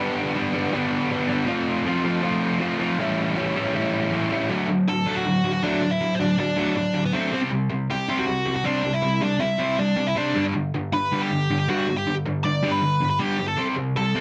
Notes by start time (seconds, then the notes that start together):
Already playing: G2 D3 G3
0.00 B3 D4
0.35 G2 D3 G3 B3 D4
0.53 G2 D3 G3 B3 D4
0.72 G2 D3 G3 B3 D4
1.09 G2 D3 G3 B3 D4
1.28 G2 D3 G3 B3 D4
1.46 F3 A3 C4 F4
1.85 F3 A3 C4 F4
2.04 F3 A3 C4 F4
2.22 F3 A3 C4 F4
2.60 F3 A3 C4 F4
2.79 F3 A3 C4 F4
2.98 A2 E3 G3 C#4 E4
3.36 A2 E3 G3 C#4 E4
3.55 A2 E3 G3 C#4 E4
3.73 A2 E3 G3 C#4 E4
4.12 A2 E3 G3 C#4 E4
4.31 A2 E3 G3 C#4 E4
4.49 D3 F#3 A3
4.69 D3 F#3
4.88 D3 F#3 A4 A5
5.06 D3 F#3 A3
5.16 F#4 F#5
5.26 D3 F#3
5.44 D3 F#3
5.53 F#4 F#5
5.63 D3 F#3 A3 D4 D5
5.82 D3 F#3
5.91 E4 E5
6.01 D3 F#3
6.15 C5
6.19 D3 F#3 D4 D5
6.38 D3 F#3 D4 D5
6.56 D3 F#3 A3
6.75 D3 F#3 D4 D5
6.94 D3 F#3
7.05 B3 B4
7.13 D3 F#3 A3 C4 C5
7.31 C3 G3 C4
7.51 C3 G3
7.70 C3 G3
7.90 C3 G3 G4 G5
8.09 C3 G3 C4
8.18 F#4 F#5
8.27 C3 G3
8.46 C3 G3
8.55 F#4 F#5
8.64 C3 G3 C4 D4 D5
8.83 C3 G3
8.94 E4 E5
9.02 C3 G3
9.21 C3 G3 D4 D5
9.40 C3 G3 E4 E5
9.59 C3 G3 C4
9.79 C3 G3 D4 D5
9.96 C3 G3
10.07 E4 E5
10.15 C3 G3 C4 D4 D5
10.34 G2 D3 G3
10.54 G2 D3
10.74 G2 D3
10.93 G2 D3 B4 B5
11.12 G2 D3 G3
11.22 G4 G5
11.30 G2 D3
11.50 G2 D3
11.59 G4 G5
11.68 G2 D3 G3 F#4 F#5
11.88 G2 D3
11.97 G4 G5
12.07 G2 D3
12.25 G2 D3
12.44 G2 D3 D5 D6
12.63 G2 D3 G3
12.71 B4 B5
12.82 G2 D3
13.01 G2 D3
13.10 B4 B5
13.19 G2 D3 G3 G4 G5
13.38 G2 D3
13.48 A4 A5
13.57 C3 G3 C4
13.76 C3 G3
13.96 C3 G3 A4 A5
14.15 C3 G3 C4